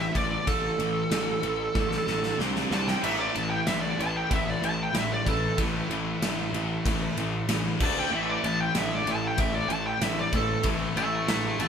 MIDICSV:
0, 0, Header, 1, 7, 480
1, 0, Start_track
1, 0, Key_signature, 0, "minor"
1, 0, Tempo, 639659
1, 359, Time_signature, 4, 2, 24, 8
1, 3719, Tempo, 632244
1, 8824, End_track
2, 0, Start_track
2, 0, Title_t, "Lead electric guitar"
2, 0, Program_c, 0, 29
2, 0, Note_on_c, 0, 76, 90
2, 114, Note_off_c, 0, 76, 0
2, 125, Note_on_c, 0, 74, 89
2, 356, Note_off_c, 0, 74, 0
2, 360, Note_on_c, 0, 69, 96
2, 1772, Note_off_c, 0, 69, 0
2, 2056, Note_on_c, 0, 81, 85
2, 2160, Note_off_c, 0, 81, 0
2, 2160, Note_on_c, 0, 79, 80
2, 2277, Note_off_c, 0, 79, 0
2, 2277, Note_on_c, 0, 76, 89
2, 2395, Note_off_c, 0, 76, 0
2, 2400, Note_on_c, 0, 74, 91
2, 2516, Note_on_c, 0, 81, 94
2, 2517, Note_off_c, 0, 74, 0
2, 2621, Note_off_c, 0, 81, 0
2, 2624, Note_on_c, 0, 79, 100
2, 2748, Note_off_c, 0, 79, 0
2, 2750, Note_on_c, 0, 76, 89
2, 2861, Note_off_c, 0, 76, 0
2, 2861, Note_on_c, 0, 74, 94
2, 2986, Note_off_c, 0, 74, 0
2, 3020, Note_on_c, 0, 81, 95
2, 3126, Note_off_c, 0, 81, 0
2, 3129, Note_on_c, 0, 79, 87
2, 3240, Note_off_c, 0, 79, 0
2, 3253, Note_on_c, 0, 76, 80
2, 3374, Note_off_c, 0, 76, 0
2, 3374, Note_on_c, 0, 74, 90
2, 3482, Note_off_c, 0, 74, 0
2, 3487, Note_on_c, 0, 81, 98
2, 3599, Note_off_c, 0, 81, 0
2, 3626, Note_on_c, 0, 79, 91
2, 3728, Note_off_c, 0, 79, 0
2, 3741, Note_on_c, 0, 76, 85
2, 3846, Note_off_c, 0, 76, 0
2, 3854, Note_on_c, 0, 74, 90
2, 3963, Note_off_c, 0, 74, 0
2, 3968, Note_on_c, 0, 69, 88
2, 4197, Note_off_c, 0, 69, 0
2, 5908, Note_on_c, 0, 81, 99
2, 6013, Note_off_c, 0, 81, 0
2, 6023, Note_on_c, 0, 79, 96
2, 6146, Note_off_c, 0, 79, 0
2, 6146, Note_on_c, 0, 76, 94
2, 6251, Note_on_c, 0, 74, 89
2, 6252, Note_off_c, 0, 76, 0
2, 6364, Note_off_c, 0, 74, 0
2, 6373, Note_on_c, 0, 81, 93
2, 6485, Note_off_c, 0, 81, 0
2, 6488, Note_on_c, 0, 79, 109
2, 6624, Note_off_c, 0, 79, 0
2, 6624, Note_on_c, 0, 76, 93
2, 6751, Note_off_c, 0, 76, 0
2, 6751, Note_on_c, 0, 74, 99
2, 6854, Note_off_c, 0, 74, 0
2, 6877, Note_on_c, 0, 81, 105
2, 6977, Note_off_c, 0, 81, 0
2, 6995, Note_on_c, 0, 79, 91
2, 7096, Note_off_c, 0, 79, 0
2, 7096, Note_on_c, 0, 76, 106
2, 7203, Note_off_c, 0, 76, 0
2, 7203, Note_on_c, 0, 74, 96
2, 7309, Note_on_c, 0, 81, 104
2, 7319, Note_off_c, 0, 74, 0
2, 7432, Note_off_c, 0, 81, 0
2, 7448, Note_on_c, 0, 79, 94
2, 7572, Note_off_c, 0, 79, 0
2, 7572, Note_on_c, 0, 76, 96
2, 7683, Note_off_c, 0, 76, 0
2, 7701, Note_on_c, 0, 74, 95
2, 7808, Note_off_c, 0, 74, 0
2, 7820, Note_on_c, 0, 69, 92
2, 8043, Note_off_c, 0, 69, 0
2, 8288, Note_on_c, 0, 76, 92
2, 8291, Note_on_c, 0, 81, 74
2, 8516, Note_off_c, 0, 81, 0
2, 8522, Note_off_c, 0, 76, 0
2, 8529, Note_on_c, 0, 76, 83
2, 8536, Note_on_c, 0, 81, 80
2, 8748, Note_off_c, 0, 76, 0
2, 8759, Note_off_c, 0, 81, 0
2, 8769, Note_on_c, 0, 76, 73
2, 8773, Note_on_c, 0, 81, 81
2, 8824, Note_off_c, 0, 76, 0
2, 8824, Note_off_c, 0, 81, 0
2, 8824, End_track
3, 0, Start_track
3, 0, Title_t, "Tonewheel organ"
3, 0, Program_c, 1, 16
3, 2268, Note_on_c, 1, 71, 79
3, 2273, Note_on_c, 1, 57, 72
3, 2274, Note_on_c, 1, 64, 64
3, 5847, Note_off_c, 1, 71, 0
3, 5849, Note_off_c, 1, 57, 0
3, 5850, Note_off_c, 1, 64, 0
3, 5883, Note_on_c, 1, 76, 75
3, 5884, Note_on_c, 1, 62, 72
3, 5888, Note_on_c, 1, 69, 63
3, 6121, Note_off_c, 1, 76, 0
3, 6122, Note_off_c, 1, 62, 0
3, 6124, Note_off_c, 1, 69, 0
3, 6127, Note_on_c, 1, 64, 64
3, 6132, Note_on_c, 1, 57, 68
3, 6132, Note_on_c, 1, 71, 80
3, 8026, Note_off_c, 1, 71, 0
3, 8065, Note_on_c, 1, 69, 79
3, 8824, Note_off_c, 1, 57, 0
3, 8824, Note_off_c, 1, 64, 0
3, 8824, Note_off_c, 1, 69, 0
3, 8824, End_track
4, 0, Start_track
4, 0, Title_t, "Distorted electric guitar"
4, 0, Program_c, 2, 30
4, 4209, Note_on_c, 2, 57, 91
4, 6138, Note_off_c, 2, 57, 0
4, 8047, Note_on_c, 2, 57, 98
4, 8824, Note_off_c, 2, 57, 0
4, 8824, End_track
5, 0, Start_track
5, 0, Title_t, "Distorted electric guitar"
5, 0, Program_c, 3, 30
5, 0, Note_on_c, 3, 45, 80
5, 0, Note_on_c, 3, 52, 88
5, 90, Note_off_c, 3, 45, 0
5, 91, Note_off_c, 3, 52, 0
5, 110, Note_on_c, 3, 45, 71
5, 111, Note_on_c, 3, 52, 72
5, 331, Note_off_c, 3, 45, 0
5, 332, Note_off_c, 3, 52, 0
5, 351, Note_on_c, 3, 45, 69
5, 354, Note_on_c, 3, 52, 93
5, 572, Note_off_c, 3, 45, 0
5, 574, Note_off_c, 3, 52, 0
5, 605, Note_on_c, 3, 45, 66
5, 607, Note_on_c, 3, 52, 69
5, 819, Note_off_c, 3, 45, 0
5, 820, Note_off_c, 3, 52, 0
5, 839, Note_on_c, 3, 45, 72
5, 841, Note_on_c, 3, 52, 89
5, 1056, Note_off_c, 3, 45, 0
5, 1057, Note_off_c, 3, 52, 0
5, 1078, Note_on_c, 3, 45, 67
5, 1078, Note_on_c, 3, 52, 83
5, 1296, Note_off_c, 3, 45, 0
5, 1296, Note_off_c, 3, 52, 0
5, 1314, Note_on_c, 3, 45, 65
5, 1320, Note_on_c, 3, 52, 78
5, 1534, Note_off_c, 3, 45, 0
5, 1537, Note_off_c, 3, 52, 0
5, 1561, Note_on_c, 3, 45, 71
5, 1561, Note_on_c, 3, 52, 84
5, 1778, Note_off_c, 3, 45, 0
5, 1778, Note_off_c, 3, 52, 0
5, 1792, Note_on_c, 3, 48, 92
5, 1802, Note_on_c, 3, 55, 100
5, 1802, Note_on_c, 3, 60, 111
5, 2022, Note_off_c, 3, 48, 0
5, 2027, Note_off_c, 3, 55, 0
5, 2027, Note_off_c, 3, 60, 0
5, 2034, Note_on_c, 3, 48, 82
5, 2035, Note_on_c, 3, 55, 89
5, 2040, Note_on_c, 3, 60, 103
5, 2263, Note_off_c, 3, 48, 0
5, 2264, Note_off_c, 3, 55, 0
5, 2266, Note_off_c, 3, 60, 0
5, 2272, Note_on_c, 3, 45, 92
5, 2278, Note_on_c, 3, 52, 108
5, 2283, Note_on_c, 3, 57, 105
5, 2502, Note_off_c, 3, 45, 0
5, 2505, Note_off_c, 3, 52, 0
5, 2508, Note_off_c, 3, 57, 0
5, 2521, Note_on_c, 3, 45, 70
5, 2527, Note_on_c, 3, 52, 70
5, 2736, Note_off_c, 3, 45, 0
5, 2739, Note_off_c, 3, 52, 0
5, 2762, Note_on_c, 3, 45, 71
5, 2769, Note_on_c, 3, 52, 77
5, 2976, Note_off_c, 3, 45, 0
5, 2980, Note_off_c, 3, 52, 0
5, 2997, Note_on_c, 3, 45, 76
5, 3001, Note_on_c, 3, 52, 87
5, 3213, Note_off_c, 3, 45, 0
5, 3216, Note_off_c, 3, 52, 0
5, 3227, Note_on_c, 3, 45, 66
5, 3236, Note_on_c, 3, 52, 74
5, 3448, Note_off_c, 3, 45, 0
5, 3452, Note_off_c, 3, 52, 0
5, 3471, Note_on_c, 3, 52, 82
5, 3473, Note_on_c, 3, 45, 73
5, 3689, Note_off_c, 3, 52, 0
5, 3690, Note_off_c, 3, 45, 0
5, 3715, Note_on_c, 3, 45, 86
5, 3716, Note_on_c, 3, 52, 85
5, 3933, Note_off_c, 3, 45, 0
5, 3934, Note_off_c, 3, 52, 0
5, 3965, Note_on_c, 3, 45, 65
5, 3970, Note_on_c, 3, 52, 75
5, 4179, Note_off_c, 3, 45, 0
5, 4181, Note_off_c, 3, 52, 0
5, 4211, Note_on_c, 3, 45, 80
5, 4214, Note_on_c, 3, 52, 91
5, 4422, Note_off_c, 3, 45, 0
5, 4423, Note_off_c, 3, 52, 0
5, 4452, Note_on_c, 3, 45, 68
5, 4458, Note_on_c, 3, 52, 79
5, 4663, Note_off_c, 3, 45, 0
5, 4666, Note_off_c, 3, 52, 0
5, 4703, Note_on_c, 3, 45, 76
5, 4703, Note_on_c, 3, 52, 79
5, 4909, Note_off_c, 3, 45, 0
5, 4909, Note_off_c, 3, 52, 0
5, 4936, Note_on_c, 3, 45, 69
5, 4943, Note_on_c, 3, 52, 83
5, 5146, Note_off_c, 3, 45, 0
5, 5149, Note_off_c, 3, 52, 0
5, 5181, Note_on_c, 3, 45, 66
5, 5181, Note_on_c, 3, 52, 78
5, 5388, Note_off_c, 3, 45, 0
5, 5388, Note_off_c, 3, 52, 0
5, 5421, Note_on_c, 3, 45, 73
5, 5425, Note_on_c, 3, 52, 78
5, 5629, Note_off_c, 3, 45, 0
5, 5630, Note_off_c, 3, 52, 0
5, 5648, Note_on_c, 3, 52, 93
5, 5649, Note_on_c, 3, 45, 81
5, 5862, Note_off_c, 3, 52, 0
5, 5863, Note_off_c, 3, 45, 0
5, 5894, Note_on_c, 3, 50, 92
5, 5894, Note_on_c, 3, 57, 90
5, 5898, Note_on_c, 3, 62, 101
5, 6114, Note_off_c, 3, 50, 0
5, 6114, Note_off_c, 3, 57, 0
5, 6117, Note_off_c, 3, 62, 0
5, 6138, Note_on_c, 3, 45, 91
5, 6141, Note_on_c, 3, 57, 115
5, 6145, Note_on_c, 3, 52, 101
5, 6357, Note_off_c, 3, 45, 0
5, 6358, Note_off_c, 3, 57, 0
5, 6360, Note_off_c, 3, 52, 0
5, 6376, Note_on_c, 3, 45, 70
5, 6380, Note_on_c, 3, 52, 78
5, 6586, Note_off_c, 3, 45, 0
5, 6588, Note_off_c, 3, 52, 0
5, 6617, Note_on_c, 3, 52, 88
5, 6619, Note_on_c, 3, 45, 79
5, 6826, Note_off_c, 3, 52, 0
5, 6827, Note_off_c, 3, 45, 0
5, 6848, Note_on_c, 3, 45, 70
5, 6852, Note_on_c, 3, 52, 78
5, 7062, Note_off_c, 3, 45, 0
5, 7063, Note_off_c, 3, 52, 0
5, 7082, Note_on_c, 3, 45, 69
5, 7090, Note_on_c, 3, 52, 86
5, 7298, Note_off_c, 3, 45, 0
5, 7302, Note_off_c, 3, 52, 0
5, 7314, Note_on_c, 3, 45, 77
5, 7317, Note_on_c, 3, 52, 84
5, 7534, Note_off_c, 3, 45, 0
5, 7535, Note_off_c, 3, 52, 0
5, 7564, Note_on_c, 3, 45, 81
5, 7571, Note_on_c, 3, 52, 91
5, 7779, Note_off_c, 3, 45, 0
5, 7782, Note_off_c, 3, 52, 0
5, 7803, Note_on_c, 3, 45, 75
5, 7809, Note_on_c, 3, 52, 72
5, 8018, Note_off_c, 3, 45, 0
5, 8021, Note_off_c, 3, 52, 0
5, 8037, Note_on_c, 3, 45, 85
5, 8040, Note_on_c, 3, 52, 101
5, 8255, Note_off_c, 3, 45, 0
5, 8256, Note_off_c, 3, 52, 0
5, 8274, Note_on_c, 3, 45, 77
5, 8286, Note_on_c, 3, 52, 79
5, 8492, Note_off_c, 3, 45, 0
5, 8499, Note_off_c, 3, 52, 0
5, 8507, Note_on_c, 3, 45, 75
5, 8510, Note_on_c, 3, 52, 83
5, 8729, Note_off_c, 3, 45, 0
5, 8730, Note_off_c, 3, 52, 0
5, 8751, Note_on_c, 3, 45, 73
5, 8753, Note_on_c, 3, 52, 84
5, 8824, Note_off_c, 3, 45, 0
5, 8824, Note_off_c, 3, 52, 0
5, 8824, End_track
6, 0, Start_track
6, 0, Title_t, "Picked electric bass"
6, 0, Program_c, 4, 34
6, 114, Note_on_c, 4, 33, 86
6, 294, Note_off_c, 4, 33, 0
6, 356, Note_on_c, 4, 33, 92
6, 536, Note_off_c, 4, 33, 0
6, 594, Note_on_c, 4, 33, 95
6, 775, Note_off_c, 4, 33, 0
6, 832, Note_on_c, 4, 33, 93
6, 1013, Note_off_c, 4, 33, 0
6, 1073, Note_on_c, 4, 33, 85
6, 1254, Note_off_c, 4, 33, 0
6, 1315, Note_on_c, 4, 33, 99
6, 1495, Note_off_c, 4, 33, 0
6, 1557, Note_on_c, 4, 33, 92
6, 1737, Note_off_c, 4, 33, 0
6, 1795, Note_on_c, 4, 36, 91
6, 1975, Note_off_c, 4, 36, 0
6, 2032, Note_on_c, 4, 36, 82
6, 2213, Note_off_c, 4, 36, 0
6, 2278, Note_on_c, 4, 33, 94
6, 2457, Note_off_c, 4, 33, 0
6, 2524, Note_on_c, 4, 33, 91
6, 2700, Note_off_c, 4, 33, 0
6, 2753, Note_on_c, 4, 33, 99
6, 2933, Note_off_c, 4, 33, 0
6, 2993, Note_on_c, 4, 33, 85
6, 3173, Note_off_c, 4, 33, 0
6, 3233, Note_on_c, 4, 33, 100
6, 3412, Note_off_c, 4, 33, 0
6, 3469, Note_on_c, 4, 33, 88
6, 3649, Note_off_c, 4, 33, 0
6, 3711, Note_on_c, 4, 33, 94
6, 3892, Note_off_c, 4, 33, 0
6, 3953, Note_on_c, 4, 33, 83
6, 4134, Note_off_c, 4, 33, 0
6, 4193, Note_on_c, 4, 33, 93
6, 4374, Note_off_c, 4, 33, 0
6, 4430, Note_on_c, 4, 33, 98
6, 4612, Note_off_c, 4, 33, 0
6, 4674, Note_on_c, 4, 33, 92
6, 4855, Note_off_c, 4, 33, 0
6, 4912, Note_on_c, 4, 33, 94
6, 5094, Note_off_c, 4, 33, 0
6, 5159, Note_on_c, 4, 33, 108
6, 5339, Note_off_c, 4, 33, 0
6, 5397, Note_on_c, 4, 33, 90
6, 5577, Note_off_c, 4, 33, 0
6, 5640, Note_on_c, 4, 33, 89
6, 5819, Note_off_c, 4, 33, 0
6, 5884, Note_on_c, 4, 38, 93
6, 6062, Note_off_c, 4, 38, 0
6, 6117, Note_on_c, 4, 33, 97
6, 6297, Note_off_c, 4, 33, 0
6, 6363, Note_on_c, 4, 33, 93
6, 6541, Note_off_c, 4, 33, 0
6, 6601, Note_on_c, 4, 33, 99
6, 6780, Note_off_c, 4, 33, 0
6, 6837, Note_on_c, 4, 33, 84
6, 7017, Note_off_c, 4, 33, 0
6, 7078, Note_on_c, 4, 33, 101
6, 7257, Note_off_c, 4, 33, 0
6, 7311, Note_on_c, 4, 33, 94
6, 7493, Note_off_c, 4, 33, 0
6, 7556, Note_on_c, 4, 33, 96
6, 7736, Note_off_c, 4, 33, 0
6, 7798, Note_on_c, 4, 33, 84
6, 7976, Note_off_c, 4, 33, 0
6, 8037, Note_on_c, 4, 33, 100
6, 8216, Note_off_c, 4, 33, 0
6, 8278, Note_on_c, 4, 33, 90
6, 8456, Note_off_c, 4, 33, 0
6, 8524, Note_on_c, 4, 33, 94
6, 8699, Note_off_c, 4, 33, 0
6, 8759, Note_on_c, 4, 33, 95
6, 8824, Note_off_c, 4, 33, 0
6, 8824, End_track
7, 0, Start_track
7, 0, Title_t, "Drums"
7, 114, Note_on_c, 9, 36, 96
7, 117, Note_on_c, 9, 51, 72
7, 189, Note_off_c, 9, 36, 0
7, 192, Note_off_c, 9, 51, 0
7, 355, Note_on_c, 9, 36, 114
7, 356, Note_on_c, 9, 51, 93
7, 430, Note_off_c, 9, 36, 0
7, 431, Note_off_c, 9, 51, 0
7, 597, Note_on_c, 9, 51, 69
7, 672, Note_off_c, 9, 51, 0
7, 836, Note_on_c, 9, 51, 102
7, 837, Note_on_c, 9, 38, 105
7, 911, Note_off_c, 9, 51, 0
7, 912, Note_off_c, 9, 38, 0
7, 1073, Note_on_c, 9, 51, 71
7, 1148, Note_off_c, 9, 51, 0
7, 1312, Note_on_c, 9, 38, 60
7, 1316, Note_on_c, 9, 36, 109
7, 1387, Note_off_c, 9, 38, 0
7, 1391, Note_off_c, 9, 36, 0
7, 1437, Note_on_c, 9, 38, 56
7, 1512, Note_off_c, 9, 38, 0
7, 1557, Note_on_c, 9, 38, 72
7, 1632, Note_off_c, 9, 38, 0
7, 1675, Note_on_c, 9, 38, 66
7, 1750, Note_off_c, 9, 38, 0
7, 1802, Note_on_c, 9, 38, 93
7, 1877, Note_off_c, 9, 38, 0
7, 1920, Note_on_c, 9, 38, 81
7, 1995, Note_off_c, 9, 38, 0
7, 2036, Note_on_c, 9, 38, 102
7, 2111, Note_off_c, 9, 38, 0
7, 2159, Note_on_c, 9, 38, 89
7, 2234, Note_off_c, 9, 38, 0
7, 2278, Note_on_c, 9, 49, 99
7, 2353, Note_off_c, 9, 49, 0
7, 2517, Note_on_c, 9, 51, 70
7, 2592, Note_off_c, 9, 51, 0
7, 2752, Note_on_c, 9, 51, 96
7, 2753, Note_on_c, 9, 38, 110
7, 2827, Note_off_c, 9, 51, 0
7, 2828, Note_off_c, 9, 38, 0
7, 3005, Note_on_c, 9, 51, 70
7, 3080, Note_off_c, 9, 51, 0
7, 3234, Note_on_c, 9, 36, 116
7, 3234, Note_on_c, 9, 51, 89
7, 3309, Note_off_c, 9, 36, 0
7, 3309, Note_off_c, 9, 51, 0
7, 3478, Note_on_c, 9, 51, 67
7, 3553, Note_off_c, 9, 51, 0
7, 3711, Note_on_c, 9, 51, 100
7, 3712, Note_on_c, 9, 38, 121
7, 3787, Note_off_c, 9, 51, 0
7, 3788, Note_off_c, 9, 38, 0
7, 3954, Note_on_c, 9, 36, 96
7, 3958, Note_on_c, 9, 51, 77
7, 4029, Note_off_c, 9, 36, 0
7, 4034, Note_off_c, 9, 51, 0
7, 4193, Note_on_c, 9, 51, 94
7, 4194, Note_on_c, 9, 36, 109
7, 4269, Note_off_c, 9, 51, 0
7, 4270, Note_off_c, 9, 36, 0
7, 4441, Note_on_c, 9, 51, 69
7, 4517, Note_off_c, 9, 51, 0
7, 4681, Note_on_c, 9, 51, 105
7, 4682, Note_on_c, 9, 38, 112
7, 4757, Note_off_c, 9, 51, 0
7, 4758, Note_off_c, 9, 38, 0
7, 4924, Note_on_c, 9, 51, 68
7, 5000, Note_off_c, 9, 51, 0
7, 5161, Note_on_c, 9, 36, 121
7, 5164, Note_on_c, 9, 51, 106
7, 5237, Note_off_c, 9, 36, 0
7, 5240, Note_off_c, 9, 51, 0
7, 5403, Note_on_c, 9, 51, 80
7, 5479, Note_off_c, 9, 51, 0
7, 5640, Note_on_c, 9, 51, 107
7, 5641, Note_on_c, 9, 38, 113
7, 5716, Note_off_c, 9, 51, 0
7, 5717, Note_off_c, 9, 38, 0
7, 5880, Note_on_c, 9, 57, 107
7, 5882, Note_on_c, 9, 36, 120
7, 5956, Note_off_c, 9, 57, 0
7, 5958, Note_off_c, 9, 36, 0
7, 6365, Note_on_c, 9, 51, 77
7, 6441, Note_off_c, 9, 51, 0
7, 6598, Note_on_c, 9, 51, 97
7, 6599, Note_on_c, 9, 38, 110
7, 6674, Note_off_c, 9, 38, 0
7, 6674, Note_off_c, 9, 51, 0
7, 6842, Note_on_c, 9, 51, 70
7, 6918, Note_off_c, 9, 51, 0
7, 7076, Note_on_c, 9, 51, 93
7, 7080, Note_on_c, 9, 36, 112
7, 7152, Note_off_c, 9, 51, 0
7, 7156, Note_off_c, 9, 36, 0
7, 7321, Note_on_c, 9, 51, 69
7, 7396, Note_off_c, 9, 51, 0
7, 7560, Note_on_c, 9, 38, 116
7, 7560, Note_on_c, 9, 51, 99
7, 7636, Note_off_c, 9, 38, 0
7, 7636, Note_off_c, 9, 51, 0
7, 7797, Note_on_c, 9, 36, 97
7, 7797, Note_on_c, 9, 51, 75
7, 7872, Note_off_c, 9, 51, 0
7, 7873, Note_off_c, 9, 36, 0
7, 8029, Note_on_c, 9, 51, 91
7, 8036, Note_on_c, 9, 36, 106
7, 8105, Note_off_c, 9, 51, 0
7, 8112, Note_off_c, 9, 36, 0
7, 8283, Note_on_c, 9, 51, 74
7, 8359, Note_off_c, 9, 51, 0
7, 8523, Note_on_c, 9, 51, 94
7, 8524, Note_on_c, 9, 38, 115
7, 8599, Note_off_c, 9, 51, 0
7, 8600, Note_off_c, 9, 38, 0
7, 8760, Note_on_c, 9, 51, 76
7, 8824, Note_off_c, 9, 51, 0
7, 8824, End_track
0, 0, End_of_file